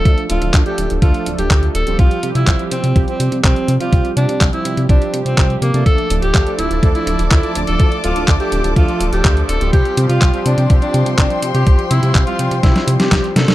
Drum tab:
HH |xxxxxxxxxxxxxxxx|xxxxxxxxxxxxxxxx|xxxxxxxxxxxxxxxx|xxxxxxxxxxxxxxxx|
CP |----x-------x---|----x-------x---|----x-------x---|----x-------x---|
SD |----------------|----------------|----------------|----------------|
BD |o---o---o---o---|o---o---o---o---|o---o---o---o---|o---o---o---o---|

HH |xxxxxxxxxxxxxxxx|xxxxxxxxxxxxxxxx|xxxxxxxxxxxxxxxx|
CP |----x-------x---|----x-------x---|----x-------x---|
SD |----------------|----------------|--------oo-oo-oo|
BD |o---o---o---o---|o---o---o---o---|o---o---o---o---|